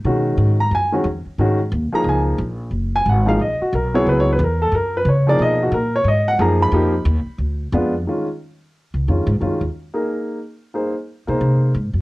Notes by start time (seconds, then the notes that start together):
0.05 B2 D#3 G#3 C#4 F#4
0.37 G#2
0.60 A#5
0.71 F#2 G#5
0.92 D#3 G#3 C#4 F#4
1.04 F2
1.26 muted upright bass stroke
1.38 G#2 D#3 G#3 C#4 F#4
1.72 D#2
1.92 F3 A#3 D#4 G#4 A#5, muted upright bass stroke
2.04 C#2
2.09 G#5
2.38 A#1
2.71 F#1
2.96 G#5
3.06 G#1 F#5
3.26 F3 A#3 D#4 G#4 F5
3.39 A#1 D#5
3.61 F#4, muted upright bass stroke
3.72 B1 A#4
3.94 F#3 B3 E4 G#4 C#5
4.06 C#2 B4
4.20 C#5
4.33 B4
4.39 E2
4.44 A#4
4.62 A4
4.72 F#2 A#4
4.97 B4
5.05 C#3 C#5
5.27 F3 A#3 D#4 G#4 D5
5.39 B2 D#5
5.63 F#4
5.72 A#2 A#4
5.96 C#5
6.04 G#2 D#5
6.28 F#5
6.39 F#2 F3 A#3 D#4 G#4 A#5
6.62 B5
6.72 F2 F3 A#3 D#4 G4
7.05 D#2
7.25 muted upright bass stroke
7.38 D2
7.72 F2 G#3 B3 D4 F4
8.07 D#3 G#3 C#4 F4
8.94 C#2
9.08 F2 D#3 G#3 C#4 F4
9.26 G#2
9.40 F#2 D#3 G#3 C#4 F4
9.61 D#2
9.94 A#3 D#4 G#4 A#4
10.74 A#3 D#4 G#4 C5
11.27 B2 A#3 D#4 G#4 C5
11.41 C3
11.75 G#2
11.94 F#2